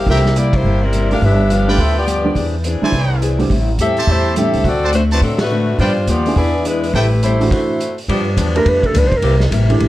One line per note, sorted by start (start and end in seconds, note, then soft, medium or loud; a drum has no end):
0.06 0.61 C2 medium
0.06 0.26 C3 soft
0.06 0.24 F3 medium
0.06 0.26 G3 soft
0.06 0.26 A#3 soft
0.06 0.24 A#3 soft
0.06 0.35 C4 medium
0.06 0.19 E4 medium
0.06 0.27 E4 soft
0.06 0.24 E4 soft
0.06 0.35 G4 medium
0.06 0.24 A4 medium
0.06 0.20 A#4 medium
0.06 0.35 A#4 medium
0.06 0.20 C5 medium
0.06 0.35 E5 loud
0.06 0.19 G5 medium
0.06 kick soft
0.06 open hi-hat soft
0.16 snare soft
0.26 snare soft
0.35 0.54 C3 medium
0.35 0.55 G3 medium
0.35 0.55 A#3 medium
0.35 0.54 A#3 medium
0.35 0.55 E4 medium
0.35 0.54 E4 medium
0.35 0.54 G4 medium
0.35 0.54 D5 medium
0.35 closed hi-hat medium
0.53 0.83 A#3 medium
0.53 0.82 E4 medium
0.53 0.83 G4 medium
0.53 0.83 C5 medium
0.53 kick medium
0.53 ride medium
0.64 1.18 G1 medium
0.64 0.83 C3 soft
0.64 0.84 G3 soft
0.64 0.84 A#3 soft
0.64 0.84 E4 soft
0.83 1.11 G3 medium
0.83 1.11 C4 medium
0.83 1.11 E4 medium
0.83 1.11 A#4 medium
0.93 1.12 C3 medium
0.93 1.12 G3 medium
0.93 1.12 A#3 medium
0.93 1.12 E4 medium
0.93 closed hi-hat medium
1.11 1.21 A3 medium
1.11 1.21 D4 medium
1.11 1.22 D4 medium
1.11 1.21 G4 medium
1.11 1.22 G4 medium
1.11 1.22 A#4 medium
1.11 1.21 D5 medium
1.11 1.22 F5 medium
1.11 open hi-hat soft
1.21 1.76 G1 medium
1.21 1.41 G2 soft
1.21 1.41 F3 soft
1.21 1.41 B3 medium
1.21 1.51 D4 medium
1.21 1.41 D4 medium
1.21 1.50 G4 medium
1.21 1.51 B4 medium
1.21 1.51 E5 medium
1.21 kick soft
1.21 open hi-hat soft
1.50 1.69 G2 medium
1.50 1.69 F3 medium
1.50 1.69 B3 medium
1.50 1.69 D4 medium
1.50 1.80 D4 medium
1.50 1.79 G4 medium
1.50 1.80 B4 medium
1.50 1.79 F5 medium
1.50 closed hi-hat medium
1.67 1.77 A3 medium
1.67 1.78 D4 medium
1.67 2.05 F4 medium
1.67 1.78 G4 medium
1.67 2.05 B4 medium
1.67 1.78 B4 medium
1.67 2.05 D5 medium
1.67 2.05 G5 loud
1.78 2.33 D2 medium
1.78 1.97 G2 soft
1.78 1.98 F3 soft
1.78 1.98 B3 soft
1.78 1.97 C4 medium
1.78 1.98 D4 soft
1.78 1.97 F4 medium
1.78 1.97 A4 medium
1.78 1.97 E5 medium
1.78 kick soft
1.78 open hi-hat soft
1.98 2.34 B3 medium
1.98 2.34 F4 medium
1.98 2.51 G4 medium
1.98 2.51 D5 medium
2.06 2.26 G2 medium
2.06 2.26 F3 medium
2.06 2.26 B3 medium
2.06 2.26 D4 medium
2.06 closed hi-hat soft
2.24 2.34 D3 medium
2.24 2.34 G3 medium
2.24 2.35 C4 medium
2.24 2.35 D4 medium
2.35 2.79 E2 medium
2.35 2.55 E3 soft
2.35 2.55 C4 soft
2.35 2.55 D4 soft
2.35 2.55 G#4 soft
2.35 kick soft
2.35 open hi-hat soft
2.64 2.83 E3 medium
2.64 2.84 C4 medium
2.64 2.84 D4 medium
2.64 2.84 G#4 medium
2.64 closed hi-hat medium
2.81 2.92 D3 medium
2.81 2.92 G3 medium
2.81 2.92 C4 medium
2.81 3.20 E4 medium
2.81 2.93 E4 medium
2.81 3.20 C5 medium
2.81 3.20 D5 medium
2.81 3.20 G#5 medium
2.81 muted upright bass stroke soft
2.92 3.47 C2 medium
2.92 3.12 E3 soft
2.92 3.12 C4 soft
2.92 3.13 D4 soft
2.92 3.13 G#4 soft
2.92 kick soft
2.92 open hi-hat soft
3.22 3.41 E3 medium
3.22 3.41 C4 medium
3.22 3.41 D4 medium
3.22 3.41 G#4 medium
3.22 closed hi-hat soft
3.39 3.49 D3 medium
3.39 3.49 G3 medium
3.39 3.49 C4 medium
3.39 3.49 G4 medium
3.39 open hi-hat soft
3.50 3.77 A1 medium
3.50 3.69 A2 soft
3.50 3.69 G3 medium
3.50 3.70 C4 soft
3.50 3.70 E4 soft
3.50 kick soft
3.50 open hi-hat soft
3.78 4.05 E2 medium
3.78 3.98 A2 medium
3.78 3.98 G3 medium
3.78 3.99 C4 medium
3.78 4.07 C4 medium
3.78 3.99 E4 medium
3.78 4.07 G4 medium
3.78 4.07 A4 medium
3.78 4.07 E5 loud
3.78 closed hi-hat soft
3.96 4.34 G4 medium
3.96 4.34 C5 medium
3.96 4.34 E5 medium
3.96 4.34 A5 loud
3.96 open hi-hat soft
4.07 4.50 E2 medium
4.07 4.27 A2 soft
4.07 4.27 G3 soft
4.07 4.37 A3 medium
4.07 4.28 C4 soft
4.07 4.37 E4 medium
4.07 4.28 E4 soft
4.07 4.36 G4 medium
4.07 4.37 C5 medium
4.07 kick soft
4.07 open hi-hat soft
4.36 4.55 A2 medium
4.36 4.65 D3 medium
4.36 4.65 G3 medium
4.36 4.56 G3 medium
4.36 4.65 C4 medium
4.36 4.64 C4 medium
4.36 4.56 C4 medium
4.36 4.65 E4 medium
4.36 4.56 E4 medium
4.36 4.64 G4 medium
4.36 4.64 A4 medium
4.36 4.64 E5 medium
4.36 closed hi-hat medium
4.54 4.63 C#2 medium
4.54 open hi-hat soft
4.64 5.19 D2 medium
4.64 4.84 D3 soft
4.64 4.84 A3 soft
4.64 4.94 C4 medium
4.64 4.85 C4 medium
4.64 4.93 F#4 medium
4.64 4.85 F#4 soft
4.64 4.94 A4 medium
4.64 4.94 D5 loud
4.64 kick soft
4.64 open hi-hat soft
4.82 4.90 F#4 medium
4.82 4.90 C5 medium
4.82 4.90 D5 medium
4.82 4.90 A5 medium
4.93 5.12 D3 medium
4.93 5.13 A3 medium
4.93 5.02 A3 medium
4.93 5.13 C4 medium
4.93 5.02 D4 medium
4.93 5.02 F#4 medium
4.93 5.13 F#4 medium
4.93 5.02 C5 medium
4.93 closed hi-hat medium
5.11 5.22 G3 medium
5.11 5.22 C4 medium
5.11 5.22 E4 medium
5.11 5.18 F#4 medium
5.11 5.22 B4 medium
5.11 5.18 C5 medium
5.11 5.18 D5 medium
5.11 5.19 A5 medium
5.11 open hi-hat soft
5.21 5.76 A2 medium
5.21 5.40 D3 soft
5.21 5.39 F#3 medium
5.21 5.41 A3 soft
5.21 5.41 C4 soft
5.21 5.39 C4 medium
5.21 5.40 D4 medium
5.21 5.41 F#4 soft
5.21 5.39 A4 medium
5.21 kick soft
5.21 open hi-hat soft
5.38 5.77 A3 medium
5.38 5.77 D4 medium
5.38 5.77 F#4 medium
5.38 5.77 B4 medium
5.38 snare medium
5.38 ride medium
5.50 5.69 D3 medium
5.50 5.70 A3 medium
5.50 5.70 C4 medium
5.50 5.70 F#4 medium
5.79 6.06 G2 medium
5.79 5.98 G2 soft
5.79 5.98 F3 soft
5.79 6.06 G3 medium
5.79 5.99 B3 soft
5.79 6.06 D4 medium
5.79 5.99 D4 medium
5.79 5.91 F4 medium
5.79 6.06 F4 medium
5.79 5.91 B4 medium
5.79 6.06 C5 medium
5.79 5.91 D5 medium
5.79 5.91 G5 medium
5.79 kick soft
5.79 open hi-hat soft
6.07 6.34 D#2 medium
6.07 6.27 G2 medium
6.07 6.27 F3 medium
6.07 6.27 B3 medium
6.07 6.36 B3 medium
6.07 6.28 D4 medium
6.07 6.38 F4 medium
6.07 6.38 G4 medium
6.07 6.36 D5 medium
6.07 closed hi-hat medium
6.26 6.63 B3 medium
6.26 6.64 D4 medium
6.26 6.64 E4 medium
6.26 6.64 G#4 medium
6.26 open hi-hat soft
6.36 6.91 E2 medium
6.36 6.55 E3 soft
6.36 6.56 B3 soft
6.36 6.64 B3 medium
6.36 6.56 D4 soft
6.36 6.64 E4 medium
6.36 6.64 G#4 medium
6.36 6.56 G#4 soft
6.36 6.64 D5 medium
6.36 kick soft
6.36 open hi-hat soft
6.65 6.84 E3 medium
6.65 6.94 G#3 medium
6.65 6.85 B3 medium
6.65 6.85 D4 medium
6.65 6.95 D4 medium
6.65 6.94 E4 medium
6.65 6.85 G#4 medium
6.65 6.94 B4 medium
6.65 closed hi-hat medium
6.83 open hi-hat soft
6.93 7.48 A1 medium
6.93 7.13 A2 soft
6.93 7.13 G3 soft
6.93 7.21 A3 medium
6.93 7.14 C4 medium
6.93 7.06 E4 medium
6.93 7.21 E4 medium
6.93 7.14 E4 soft
6.93 7.21 G4 medium
6.93 7.06 A4 medium
6.93 7.21 B4 medium
6.93 7.06 C5 medium
6.93 7.06 G5 medium
6.93 kick soft
6.93 open hi-hat soft
7.23 7.42 A2 medium
7.23 7.42 G3 medium
7.23 7.50 A3 medium
7.23 7.42 C4 medium
7.23 7.50 E4 medium
7.23 7.42 E4 medium
7.23 7.50 G4 medium
7.23 7.50 C5 medium
7.23 closed hi-hat soft
7.40 7.78 E3 medium
7.40 7.78 A3 medium
7.40 7.78 D4 medium
7.40 7.78 F#4 medium
7.40 open hi-hat soft
7.51 7.95 A3 medium
7.51 7.95 E4 medium
7.51 7.95 F#4 medium
7.51 7.95 C5 medium
7.51 kick medium
7.51 open hi-hat soft
7.51 crash medium
7.81 closed hi-hat medium
7.98 open hi-hat soft
8.08 8.36 G2 medium
8.08 8.28 G2 soft
8.08 8.52 F3 medium
8.08 8.28 F3 medium
8.08 8.52 B3 medium
8.08 8.28 B3 medium
8.08 8.51 D4 medium
8.08 8.29 D4 soft
8.08 8.51 G4 medium
8.08 kick soft
8.08 ride medium
8.37 8.65 E2 medium
8.37 8.56 G2 medium
8.37 8.56 F3 medium
8.37 8.56 B3 medium
8.37 8.57 D4 medium
8.37 kick soft
8.37 hi-hat pedal medium
8.37 ride medium
8.55 8.93 A3 medium
8.55 8.93 D4 medium
8.55 8.93 G4 medium
8.55 8.70 A#4 medium
8.55 8.93 B4 medium
8.55 ride soft
8.65 8.93 F2 medium
8.65 8.85 G2 soft
8.65 8.85 F3 soft
8.65 8.86 B3 soft
8.65 8.86 D4 soft
8.65 8.88 B4 medium
8.65 kick soft
8.65 ride medium
8.83 9.00 A4 medium
8.83 kick soft
8.83 ride soft
8.94 9.03 D2 medium
8.94 9.13 G2 medium
8.94 9.14 F3 medium
8.94 9.14 B3 medium
8.94 9.14 D4 medium
8.94 kick soft
8.94 hi-hat pedal medium
8.94 ride medium
8.98 9.09 B4 medium
9.03 9.12 B1 medium
9.03 9.19 C5 medium
9.12 9.22 G1 medium
9.12 kick medium
9.12 ride soft
9.17 9.44 A#4 medium
9.22 9.50 C2 medium
9.22 9.42 C3 soft
9.22 9.35 E3 medium
9.22 9.42 G3 soft
9.22 9.35 A#3 medium
9.22 9.42 A#3 soft
9.22 9.35 C4 medium
9.22 9.43 E4 medium
9.22 9.35 G4 medium
9.22 kick soft
9.22 ride medium
9.40 snare soft
9.51 9.79 A1 medium
9.51 9.71 C3 medium
9.51 9.71 G3 medium
9.51 9.71 A#3 medium
9.51 9.71 E4 medium
9.51 kick soft
9.51 hi-hat pedal medium
9.51 ride medium
9.70 9.88 E3 medium
9.70 9.88 A3 medium
9.70 9.88 D4 medium
9.70 9.88 G4 medium
9.70 ride soft
9.80 9.88 A#1 medium
9.80 9.88 C3 soft
9.80 9.88 G3 medium
9.80 9.88 A#3 medium
9.80 9.88 E4 soft
9.80 kick soft
9.80 ride medium